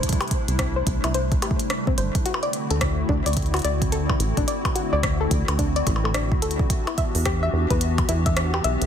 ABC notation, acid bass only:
X:1
M:4/4
L:1/16
Q:"Swing 16ths" 1/4=108
K:Dmix
V:1 name="Acid bass" clef=bass
z3 C,,3 C,, C,,3 z4 G,,, z | z3 D,,3 D,, D,,3 D,,4 A,,, A,,, | z3 D,,3 D,, D,,3 A,,,3 D,,3 | z3 E,,3 E,, E,,3 E,,4 B,,, B,,, |]